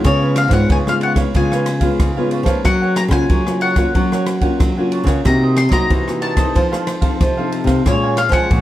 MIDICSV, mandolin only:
0, 0, Header, 1, 2, 480
1, 0, Start_track
1, 0, Tempo, 650759
1, 37, Time_signature, 4, 2, 24, 8
1, 6351, End_track
2, 0, Start_track
2, 0, Title_t, "Mandolin"
2, 0, Program_c, 0, 25
2, 46, Note_on_c, 0, 73, 77
2, 265, Note_off_c, 0, 73, 0
2, 279, Note_on_c, 0, 77, 84
2, 390, Note_off_c, 0, 77, 0
2, 393, Note_on_c, 0, 78, 72
2, 506, Note_off_c, 0, 78, 0
2, 530, Note_on_c, 0, 80, 80
2, 567, Note_off_c, 0, 80, 0
2, 657, Note_on_c, 0, 77, 72
2, 694, Note_off_c, 0, 77, 0
2, 761, Note_on_c, 0, 78, 72
2, 825, Note_off_c, 0, 78, 0
2, 1006, Note_on_c, 0, 80, 69
2, 1691, Note_off_c, 0, 80, 0
2, 1957, Note_on_c, 0, 78, 83
2, 2186, Note_off_c, 0, 78, 0
2, 2189, Note_on_c, 0, 82, 89
2, 2226, Note_off_c, 0, 82, 0
2, 2304, Note_on_c, 0, 80, 82
2, 2666, Note_off_c, 0, 80, 0
2, 2669, Note_on_c, 0, 78, 67
2, 3363, Note_off_c, 0, 78, 0
2, 3884, Note_on_c, 0, 82, 80
2, 4103, Note_off_c, 0, 82, 0
2, 4112, Note_on_c, 0, 84, 88
2, 4219, Note_off_c, 0, 84, 0
2, 4222, Note_on_c, 0, 82, 88
2, 4563, Note_off_c, 0, 82, 0
2, 4589, Note_on_c, 0, 81, 68
2, 5283, Note_off_c, 0, 81, 0
2, 5807, Note_on_c, 0, 73, 81
2, 6032, Note_on_c, 0, 77, 92
2, 6048, Note_off_c, 0, 73, 0
2, 6142, Note_off_c, 0, 77, 0
2, 6145, Note_on_c, 0, 78, 84
2, 6351, Note_off_c, 0, 78, 0
2, 6351, End_track
0, 0, End_of_file